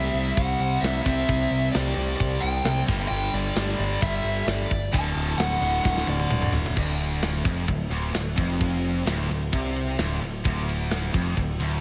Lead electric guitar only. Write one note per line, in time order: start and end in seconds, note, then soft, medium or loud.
0.00 0.32 E5 loud
0.34 0.82 F#5 loud
0.81 1.01 E5 loud
1.02 1.68 E5 medium
1.72 1.94 D5 loud
1.95 2.15 D5 medium
2.16 2.41 D5 medium
2.40 2.83 G5 medium
3.08 3.33 G5 loud
3.34 4.02 D5 medium
4.02 4.47 E5 medium
4.48 4.95 D5 loud
4.93 5.35 A5 loud
5.38 5.83 F#5 loud
5.84 6.06 F#5 loud
6.09 6.51 D5 medium